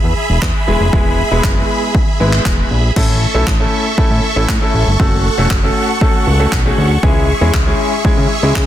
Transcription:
Already playing: G#4 E5 B5
0.04 E2
0.30 E1
0.42 E2, kick, clap
0.67 E1 G#3 B3 E4 G#4
0.80 F1
0.93 E1 G#3 B3 E4 G#4, kick
1.31 E1 G#3 B3 E4 G#4
1.44 F#1, kick, clap
1.95 kick
2.20 G#1 G#3 B3 E4 B4
2.33 clap
2.45 E1, kick, clap
2.71 A#1
2.96 A1 A3 C#4 E4 A4 E5 C#6, kick, crash
3.34 B1 A3 C#4 E4 A4
3.47 A1, kick, clap
3.60 A3 C#4 E4 A4
3.98 A2 A3 C#4 E4 A4, kick
4.11 A2
4.36 A1 A3 C#4 E4 A4
4.49 A2, kick, clap
4.61 A3 C#4 E4 A4
4.74 A1
4.87 G1
5.00 F#1 A3 C#4 F#4 A4 F#5, kick
5.38 E1 A3 C#4 F#4 A4
5.50 F#1, kick, clap
5.63 A3 C#4 F#4 A4
6.01 A3 C#4 F#4 A4, kick
6.27 C#2
6.39 A3 C#4 F#4 A4
6.52 B1, kick, clap
6.65 A3 C#4 F#4 G#4
6.78 D2
7.03 C#2 G#3 C#4 E4 G#4 E5, kick
7.41 E2 G#3 C#4 E4 G#4
7.54 C#2, kick, clap
7.66 G#3 C#4 E4 G#4
8.05 C#3 G#3 C#4 E4 G#4, kick
8.17 C#3
8.43 C#2 G#3 C#4 E4 G#4
8.56 C#3, kick, clap

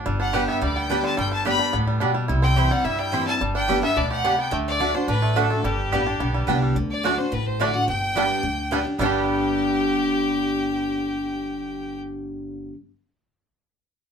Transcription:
Already playing: D4
0.06 G1 G2 G3
0.20 D4 F#5
0.33 G3 B3 D4 G4 D5 G5
0.48 B3 E5
0.62 D2 D3 G3 D5
0.76 B3 G5
0.89 G3 B3 D4 G4 D5 G5
1.04 D3 A5
1.17 G1 G2 G3 G5
1.32 D4 A5
1.45 G3 B3 D4 G4 D5 G5 B5
1.59 D4
1.73 D2 A2 B3
1.87 G3
2.00 B2 B3 D4 G4 D5 G5
2.14 G3
2.28 C2 C3 E4
2.42 C4 G5
2.56 E3 G3 C4 E4 G4 C5 G5
2.70 G3 C4 E4 F#5
2.84 G2 E4 E5
2.99 G3 G5
3.12 E3 G3 C4 E4 C5 G5
3.27 G3 C4 E4 A5
3.41 G1 G2 G3
3.55 D4 G5
3.68 G3 B3 D4 G4 D5 G5
3.82 B3 D4 G4 E5
3.96 D2 B2 D4 D5
4.11 G4 F#5
4.24 C3 B3 D4 G4 D5 G5
4.36 B3 F#5 G5
4.40 G5
4.51 D2 D3 A3
4.68 D5
4.79 D3 A3 D4 F#4 D5 F#5
4.94 D4 F#4 C5
5.08 A1 A2 D4 B4
5.22 A3
5.36 D3 A3 D4 F#4 A4 D5 F#5
5.50 A3 D4 F#4
5.64 G1 G2 G3 G4
5.92 A1 G3 B3 D4 G4 D5 G5
6.06 D4 G4
6.20 B1 D3 B3
6.34 G3
6.47 C2 G3 B3 D4 G4 D5 G5
6.62 G3
6.75 D2 D3
6.91 D5
7.03 D3 A3 D4 F#4 D5 F#5
7.18 D4 F#4 C5
7.32 A1 A2 B4
7.46 C5
7.60 D3 A3 D4 F#4 D5 F#5
7.74 D4 F#4 F#5
7.88 G1 G2 G5
8.15 G3 B3 D4 G4 D5 G5
8.43 D2 D3
8.71 G3 B3 D4 G4 D5 G5
8.84 D4 G4
8.98 G1 G2 D3 G3 B3 D4 G4 D5 G5
9.03 D4 G4

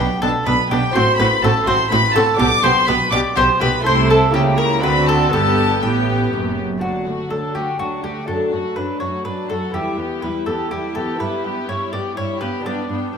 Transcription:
Already playing: B3 D4 G4
0.00 B2 G5
0.22 B1 B2 B3 D4 A4 A5
0.46 B1 B2 B3 D4 B4 B5
0.70 B1 B2 B3 D4 G4 G5
0.91 A1 A2 C4 F#4 C6
0.95 A2 C5
1.18 A1 A2 C4 F#4 B4 B5
1.43 A1 A2 C4 F#4 A4 A5
1.67 A1 A2 C4 F#4 C5 C6
1.91 A1 A2 C4 F#4 B4 B5
2.14 A1 A2 C4 F#4 A4 A5
2.35 B2 B3 D4 G4 D6
2.39 B1 B2 G4 D5
2.63 B1 B2 B3 G4 C5 C6
2.87 B1 B2 B3 G4 B4 B5
3.11 B1 B2 B3 G4 D5 D6
3.36 B1 B2 B3 G4 C5 C6
3.60 B1 B2 B3 G4 B4 B5
3.80 A3 E4 A4
3.85 C2 C3 A3 E4 C5 C6
4.10 A4 A5
4.29 A#3 E4 G4
4.33 C#2 C#3 A#3 E4 G4 G5
4.58 A#4 A#5
4.79 D2 C4 D4 F#4
4.83 D3 C4 F#4 B4 B5
5.08 A4 A5
5.29 B3 D4 G4
5.33 G1 G2 B3 G4 A4 A5
5.83 A1 A2 B3 G4 G5
6.32 F#1 F#2
6.78 A3 D4 F#4
6.82 D2 F#3 D4 A5
7.06 D2 A3 F#4 F#5
7.30 D2 F#3 D4 A4 A5
7.55 D2 A3 F#4 G4 F#5
7.79 D2 F#3 D4 F#4 A5
8.03 D2 A3 F#4 G4 F#5
8.24 A3 D4 F#4 A4 A5
8.28 F#2 F#3 D4
8.52 F#2 A3 F#4 F#5
8.76 F#2 F#3 D4 B4 A5
9.00 F#2 A3 F#4 C#5 F#5
9.25 F#2 F#3 D4 B4 A5
9.50 F#2 A3 F#4 A4 F#5
9.70 B3 E4 G4
9.74 E2 G3 E5
9.98 E2 B3 G4 G5
10.22 E2 G3 E4 B4 E5
10.46 E2 B3 G4 A4 G5
10.71 E2 G3 E4 G4 E5
10.95 E2 B3 G4 A4 G5
11.16 B3 E4 G4 E5
11.20 G2 G3 E4 B4
11.44 G2 B3 G4 G5
11.68 G2 G3 E4 C#5 E5
11.92 G2 B3 G4 D5 G5
12.17 G2 G3 E4 C#5 E5
12.40 G2 B3 G4 B4 G5
12.60 B3 D4 G4
12.65 G2 B3 D4 D5 G5
12.89 G2 B3 D4 G5
13.13 G2 B3 D4 G5

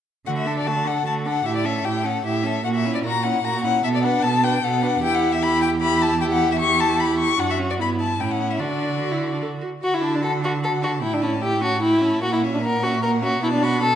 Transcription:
0.26 D3 A3 F#4 F#5
0.37 E5
0.46 D4 A4
0.57 D5
0.66 D3 A3 F#4 A5
0.86 D4 A4 F#5
1.06 D3 A3 F#4 A5
1.26 D4 A4 F#5
1.45 A2 E4 G4 E5
1.56 D5
1.64 C#4 A4 E5
1.84 A2 E4 G4 G5
2.03 C#4 A4 F#5
2.25 A2 E4 G4 E5
2.44 C#4 A4
2.65 A#2 A#3 F#4 F#5
2.75 E5
2.85 C#4 E4
2.95 D5
3.04 A#2 A#3 F#4 A#5
3.23 C#4 E4 F#5
3.44 A#2 A#3 F#4 A#5
3.64 C#4 E4 F#5
3.84 B2 B3 A4 E5
3.95 D5
4.03 D4 B4 F#5
4.23 B2 B3 A4 A5
4.43 D4 B4 G5
4.62 B2 B3 A4 F#5
4.82 D4 B4
5.01 E2 E4 G4 G5
5.15 F#5
5.33 E5
5.40 E4 G4 B5
5.62 G5
5.81 E4 G4 B5
6.02 A5
6.20 E4 G4 G5
6.32 F#5
6.52 E5
6.60 E4 G4 C#6
6.80 A5
7.00 B5
7.19 C#6
7.38 F#2 D4 F#4 F#5
7.50 E5
7.58 C#4
7.70 D5
7.79 G2 B3 E4 B5
8.01 A5
8.19 A2 C#4 E4 G5
8.31 F#5
8.51 E5
8.59 D3 D4 F#4 D5
9.01 F#4
9.12 E4
9.33 D4
9.42 A4
9.62 F#4
9.82 D3 F#4 F#5
9.94 E4
10.02 D4 A5
10.15 D4
10.22 F#4 A4 F#5
10.42 D4 F#4 A5
10.62 F#4 A4 F#5
10.82 D4 F#4 A5
11.02 A2 E4 G5
11.13 D4
11.22 C#4 E4 A5
11.42 E4 G4 G5
11.61 C#4 F#4 A5
11.82 E4 G5
12.01 C#4 A5
12.22 A#2 A#3 F#4 F#5
12.33 E4
12.42 C#4 E5
12.53 D4
12.62 A#3 A#4 F#5
12.83 C#4 F#4 E5
13.01 A#3 A#4 F#5
13.21 C#4 F#4 E5
13.42 B2 B3 E4 A5
13.53 D4
13.62 D4 F#4 B5
13.82 B3 A4 A5

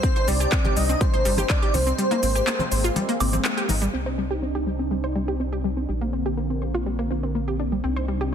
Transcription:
Already playing: C4 C5
0.03 C3 C4 D4 D#4, kick, closed hi-hat, shaker
0.16 C5, closed hi-hat, high bongo
0.28 C2 G3 D5, open hi-hat, shaker
0.40 G4, closed hi-hat, shaker
0.52 C4, kick, clap, closed hi-hat, shaker
0.64 G4, closed hi-hat, high conga, low conga
0.76 C2 G3 D#5, open hi-hat, shaker
0.89 C4, closed hi-hat, shaker
1.01 G3 C5, kick, closed hi-hat, high conga, shaker
1.14 C5, closed hi-hat, low conga
1.25 G1 G3, open hi-hat, shaker
1.37 G4, closed hi-hat, high bongo, high conga, shaker
1.50 C4 D5, kick, clap, closed hi-hat, shaker
1.62 G4, closed hi-hat, high woodblock
1.74 C2 G3 C5, open hi-hat, high conga, low conga, shaker
1.87 C4, closed hi-hat, shaker
1.98 G3 G#3 A#3 C4, closed hi-hat, shaker
2.11 A#3, closed hi-hat, high bongo
2.23 G#1 C4, open hi-hat, shaker
2.35 G4, closed hi-hat, shaker
2.47 A#3, clap, closed hi-hat, shaker
2.59 C4, closed hi-hat, high conga, low conga
2.72 G#1 C5, open hi-hat, shaker
2.84 F4, closed hi-hat, shaker
2.96 G3, closed hi-hat, high conga, shaker
3.09 A#3, closed hi-hat
3.20 G#1 C4, open hi-hat, low conga, high woodblock, shaker
3.33 C4, closed hi-hat, high conga, shaker
3.45 A#3, clap, closed hi-hat, shaker
3.57 G4, closed hi-hat
3.69 G#1 D#4, open hi-hat, high bongo, high conga, shaker
3.82 G3, closed hi-hat, shaker
3.93 C2 C3 C4 D4 D#4
4.06 C5
4.18 G3
4.31 G4
4.42 C4
4.55 G4
4.67 G3
4.79 C4
4.91 G3
5.04 C5
5.15 G3
5.28 G4
5.40 C4
5.53 G4
5.64 G3
5.77 C4
5.89 A#1 D3 G3 A#3 C4
6.01 A#3
6.13 C4
6.26 G4
6.37 A#3
6.50 C4
6.62 C5
6.74 F4
6.86 G3
6.99 A#3
7.11 C4
7.23 C4
7.35 A#3
7.48 G4
7.59 D4
7.72 G3
7.84 C2 C3 C4 D4 D#4
7.96 C5
8.08 G3
8.21 G4

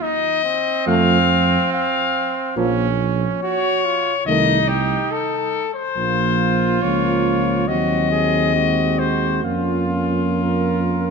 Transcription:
0.02 D#4 D#5
0.45 C4
0.86 F2 F3 A3 F5
1.73 F5
2.56 A#1 F3 A#3 C#4
3.42 F#4 C#5
3.85 F4
4.26 C2 D#3 A3 D#4 D#5
4.68 G4
5.11 A4
5.74 C5
5.97 A#1 F3 A#3 F4
6.82 C#2 F3 A#3 C#5
7.68 D#2 F#3 C4 F#4 D#5
8.12 G#4
8.55 G#3 F#4
8.99 C5
9.43 F2 A#3 C#4 F4
10.33 A#4

